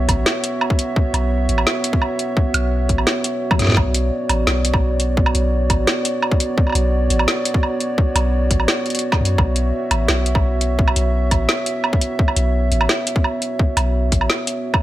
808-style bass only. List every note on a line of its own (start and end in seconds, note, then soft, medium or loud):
0.09 0.25 A1 medium
1.14 1.48 B1 loud
1.49 1.65 A1 medium
2.54 2.88 B1 medium
2.89 3.05 A1 medium
3.59 3.76 F#2 medium
3.77 4.11 B1 loud
4.30 4.46 A1 medium
4.47 5.34 B1 medium
5.35 5.69 B1 medium
5.70 5.86 A1 medium
6.75 7.09 B1 medium
7.10 7.27 A1 medium
8.16 8.50 B1 loud
8.51 8.67 A1 medium
9.21 9.37 F#2 medium
9.38 9.72 B1 loud
9.91 10.07 A1 medium
10.09 10.95 B1 medium
10.96 11.30 B1 medium
11.31 11.48 A1 medium
12.37 12.71 B1 medium
12.72 12.88 A1 medium
13.77 14.11 B1 loud
14.12 14.28 A1 medium